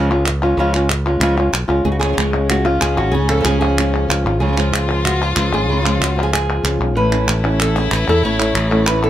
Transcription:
Already playing: C#2
0.10 G#3 C#4 F4
0.26 muted nylon-string guitar stroke, clap
0.43 G#3 C#4 F4
0.57 C#2 C#3 F3 G#3 C#4 F4
0.74 G#3 C#4 F4, clap
0.90 muted nylon-string guitar stroke, clap
1.06 G#3 C#4 F4
1.20 C#2 C#3 F3 G#3 C#4 F4, clap
1.37 G#3 C#4 F4
1.52 B1, muted nylon-string guitar stroke, clap
1.68 C#2 G#3 C#4 F4
1.85 C#2 C#3 G#3 C#4 G#4, muted nylon-string guitar stroke
1.92 F#4
1.99 F3 G#3 G#4, clap
2.04 G#3 C#4 F4
2.08 F3 G#3 C#4 F4
2.12 F3 G#3 C#4 F4
2.17 C#2 C#3 F3 G#3 C#4 F4, clap
2.32 G#3 C#4 F4
2.49 C#3 F3 G#3 C#4 F4 F#4, clap
2.65 G#3 C#4 F4
2.81 C#2 G#4, muted nylon-string guitar stroke, clap
2.97 G#1 F#4
3.12 C#2 C#3 G#4, muted nylon-string guitar stroke
3.29 F3 G#3 A4, clap
3.34 F3 G#3 C#4 F4
3.38 F3 G#3 C#4 F4 A4
3.42 C#2 C#3 C#4 F4 G#4, clap
3.46 F3 G#3 C#4 F4
3.61 F3 G#3 C#4 F4 G#4
3.77 C#3 F3 G#3 C#4 F4, clap
3.93 G#3 F4
4.08 C#2 F4, muted nylon-string guitar stroke, clap
4.25 G#1 F4
4.40 C#2 C#3 F3 G#3 C#4 F4 G#4
4.47 F3 G#3 C#4 F4
4.52 F3 G#3 C#4 F4
4.56 C#3 F3 G#3 C#4 F4, clap
4.72 C#2 G#3 C#4 F4, clap
4.91 F3
5.05 F#4, muted nylon-string guitar stroke, clap
5.22 F4
5.36 C#2 F3 G#3 C#4 F4, clap
5.52 G#1 G#3 C#4 F4 G#4
5.68 C#2 C#3 F3 G#3 C#4
5.72 F3 C#4 F4
5.77 F3 G#3 C#4 F4
5.81 C#3 F3 G#3 C#4 F4
5.85 F3 G#3 C#4 F4, clap
6.00 C#2 G#3 C#4 F4 F#4, clap
6.16 F3
6.23 G#4
6.32 G#4, muted nylon-string guitar stroke, clap
6.63 C#2 F3 G#3 C#4 F4, clap
6.79 B1 C#4 F4
6.83 G#3
6.95 A1 A2 E3 B3 C#4 E4 B4
7.12 B3 C#4 E4, clap
7.28 A1, muted nylon-string guitar stroke, clap
7.44 B3 C#4 E4
7.60 E3 B3 C#4 E4 A4, clap
7.76 B3 C#4 E4 G#4
7.91 A1 B4, muted nylon-string guitar stroke, clap
8.07 E2 B3 C#4 E4 A4
8.23 A1 A2 E3 B3 C#4 E4 C#5
8.39 A3 B3 C#4 E4, clap
8.55 A1, muted nylon-string guitar stroke, clap
8.71 A3 B3 C#4 E4
8.87 E3 B3 C#4 E4 B4, clap
9.03 B3 C#4 E4 A4

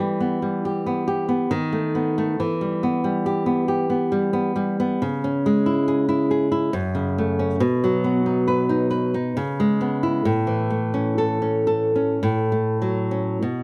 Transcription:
Already playing: E3
0.00 G3
0.20 B3
0.42 G3
0.65 G4
0.86 B3
1.08 G4
1.29 B3
1.51 D#3
1.72 A3
1.95 B3
2.18 A3
2.40 E3
2.61 G3
2.83 B3
3.04 G3
3.26 G4
3.46 B3
3.68 G4
3.90 B3
4.12 G3
4.33 B3
4.56 G3
4.80 B3
5.02 C#3
5.24 C#4
5.46 G#3
5.66 E4
5.88 G#4
6.09 E4
6.31 G#4
6.52 E4
6.73 F#2
6.95 C#3
7.18 A3
7.39 C#4
7.60 B2
7.84 F#3
8.04 B3
8.26 D#4
8.48 B4
8.69 D#4
8.91 B4
9.14 D#4
9.37 C#3
9.60 G#3
9.81 B3
10.03 E4
10.25 A2
10.47 E3
10.70 A3
10.94 C#4
11.18 A4
11.42 C#4
11.67 A4
11.96 C#4
12.23 A2
12.52 A3
12.82 F#3
13.11 C#4
13.42 B2

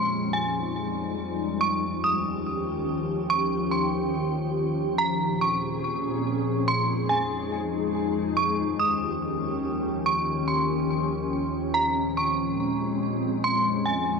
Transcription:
Already playing: F2 F3 G3 G#3 D#4 C6
0.33 G#5
1.61 D#2 D#3 F3 C#4 G4 C#6
2.04 D#6
3.30 C#6
3.72 C6
4.98 A#2 C4 C#4 G#4 A#5
5.41 C#6
6.68 F2 F3 G#3 D#4 G#4 C6
7.09 G#5
8.37 D#2 D#3 C#4 G4 C#6
8.80 D#6
10.06 C#6
10.47 C6
11.74 A#2 G#3 C4 A#5
12.17 C#6
13.44 F2 G3 D#4 C6
13.85 G#5

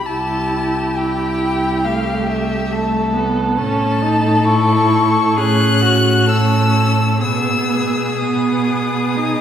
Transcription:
0.06 C2 E4 G4 A5
0.97 E4 G5
1.85 A3 F5
2.28 E5
2.72 A3 A4
3.14 B3
3.57 A2 C#4 A4 A5
4.01 D#4
4.45 E4 C#6
5.36 A2 C#4 G#4 F#6
5.81 F#4
6.27 C#4 A4 E6
7.21 B2 B3 G#4 E6
8.18 B3 D#6
9.17 D#4

